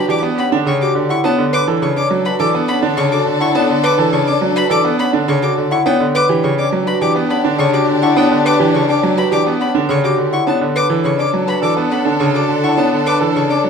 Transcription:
Already playing: D4 F#4 G4 B4
0.08 E3 G4 D5 D6
0.23 B3
0.38 C#4 F#5 B5
0.52 D3 D4
0.66 C#3 C#5 C#6
0.81 F#4 G4 D6
0.95 D3
1.09 E4 F#5 C#6
1.24 B3 D4 A4 C#5 A5
1.38 D3
1.53 B4 D6
1.68 E3 A4
1.82 C#3 C#5 C#6
1.96 C#4 D5 D6
2.11 F#3
2.25 F#4 B4 B5
2.39 E3 A4 D5 D6
2.55 B3
2.68 C#4 F#5 B5
2.83 D3 D4
2.97 C#3 C#5 C#6
3.12 F#4 A4 D6
3.26 D3
3.40 E4 F#5 C#6
3.55 B3 D4 C#5 A5
3.70 D3
3.83 B4 D6
3.98 E3 A4
4.13 C#3 C#5 C#6
4.27 C#4 D5 D6
4.41 F#3
4.56 F#4 B4 B5
4.70 E3 A4 D5 D6
4.85 B3
4.99 C#4 F#5 B5
5.13 D3 D4
5.28 C#3 C#5 C#6
5.42 F#4 A4 D6
5.58 D3
5.71 E4 F#5 C#6
5.86 B3 D4 G4 C#5 G5
6.00 D3
6.15 B4 D6
6.29 E3 G4
6.43 C#3 C#5 C#6
6.58 C#4 D5 D6
6.73 F#3
6.87 F#4 B4 B5
7.01 E3 G4 D5 D6
7.15 B3
7.30 C#4 F#5 B5
7.45 D3 D4
7.59 C#3 C#5 C#6
7.73 F#4 G4 D6
7.88 D3
8.02 E4 F#5 C#6
8.16 B3 D4 C#5 G5
8.31 D3
8.45 B4 D6
8.59 E3 G4
8.74 C#3 C#5 C#6
8.88 C#4 D5 D6
9.03 F#3
9.17 F#4 B4 B5
9.32 E3 G4 D5 D6
9.46 B3
9.60 C#4 F#5 B5
9.75 D3 D4
9.89 C#3 C#5 C#6
10.04 F#4 G4 D6
10.18 D3
10.33 E4 F#5 C#6
10.47 B3 D4 A4 C#5 A5
10.61 D3
10.76 B4 D6
10.90 E3 A4
11.04 C#3 C#5 C#6
11.18 C#4 D5 D6
11.34 F#3
11.47 F#4 B4 B5
11.62 E3 A4 D5 D6
11.77 B3
11.91 C#4 F#5 B5
12.05 D3 D4
12.20 C#3 C#5 C#6
12.34 F#4 A4 D6
12.49 D3
12.63 E4 F#5 C#6
12.77 B3 D4 C#5 A5
12.93 D3
13.06 B4 D6
13.21 E3 A4
13.35 C#3 C#5 C#6
13.49 C#4 D5 D6
13.64 F#3

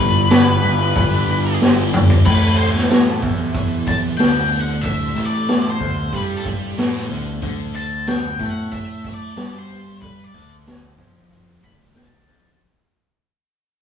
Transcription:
Already playing: G2 D3 E3 G3 B3 D4 G4 B4
0.00 G1
0.15 shaker
0.30 G1, snare, open hi-hat, shaker
0.61 G1 G2 D3 G3, shaker
0.79 shaker
0.95 G1, kick, open hi-hat, shaker
1.26 G1, shaker
1.43 shaker
1.60 G1, snare, shaker
1.93 G1, mid tom, shaker
2.10 floor tom, shaker
2.25 A1 A2 E3 A3 C4 G4 A4 B4, kick, crash
2.57 C5, open hi-hat
2.75 snare
2.90 snare, open hi-hat
3.22 E2 E3, kick, open hi-hat
3.54 kick, open hi-hat
3.87 A5, kick, open hi-hat
4.17 D2 D3 G5, snare, open hi-hat
4.52 open hi-hat
4.61 F#5
4.81 E5, kick, open hi-hat
5.15 A1 A2, open hi-hat
5.26 D5
5.48 snare, open hi-hat
5.70 C5
5.81 D2 D3, kick, open hi-hat
6.12 G2 G3 B4, kick, open hi-hat
6.37 A4
6.45 kick, open hi-hat
6.78 A1 A2, snare, open hi-hat
6.95 snare
7.09 D2 D3, open hi-hat
7.42 D2 D3, kick, open hi-hat
7.75 A5, open hi-hat
8.07 G5, snare, open hi-hat
8.39 A2 A3, kick, open hi-hat
8.50 F#5
8.72 E5, kick, open hi-hat
9.04 kick, open hi-hat
9.14 D5
9.36 G2 G3, snare, open hi-hat
9.58 C5
9.70 open hi-hat
10.01 B4, kick, open hi-hat
10.24 D5
10.34 D2 D3, open hi-hat
10.67 snare, open hi-hat
10.98 F2 F3, kick, open hi-hat
11.31 kick, open hi-hat
11.63 D2 D3 B5, kick, open hi-hat
11.95 A5, snare, open hi-hat
12.28 F2 F3, open hi-hat

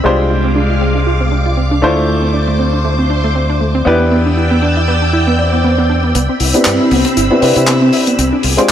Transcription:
0.04 C2 G#3 C4 D4 F4 G4 C5 F5 D6
0.19 D4
0.30 F4
0.44 C4
0.56 D4
0.70 F4
0.81 C4
0.95 D4
1.07 F4
1.21 C4
1.32 D4
1.46 F4
1.57 C4
1.71 D4
1.82 D2 A3 D4 E4 F4 C5
1.97 A3
2.08 A3
2.22 C4
2.34 D4
2.48 A3
2.59 C4
2.73 D4
2.85 A3
2.99 C4
3.10 D4
3.24 A3
3.35 C4
3.49 D4
3.61 A3
3.75 C4
3.85 E2 B3 D4 E4 G4 B4 D5 G5 E6
4.00 B3
4.12 B3
4.26 D4
4.37 E4
4.51 B3
4.62 D4
4.77 E4
4.88 B3
5.02 D4
5.13 E4, swell
5.27 B3
5.39 D5
5.53 B3
5.64 B3
5.78 B3
5.90 D4
6.04 B3
6.15 C2 B3 C4 B5 E6, closed hi-hat
6.29 C4
6.40 C2 E4, open hi-hat
6.53 B3 C4 D4 E4 G4 B4, closed hi-hat
6.65 G2 C4, clap, closed hi-hat
6.80 E4
6.91 C2 B3, open hi-hat
7.05 C4, closed hi-hat
7.17 G1 E4, closed hi-hat
7.30 B3 C4 D4 E4 G4 B4
7.41 C3 C4 D4 E4 G4 B4, open hi-hat
7.56 C3 E4, closed hi-hat
7.67 B3, clap, closed hi-hat
7.82 C4
7.93 E4, open hi-hat
8.07 B3, closed hi-hat
8.19 C2 C4 G#4 D6, closed hi-hat
8.33 D4
8.43 C2 F4, open hi-hat
8.57 G#3 C4 D4 F4 G4 C5, closed hi-hat

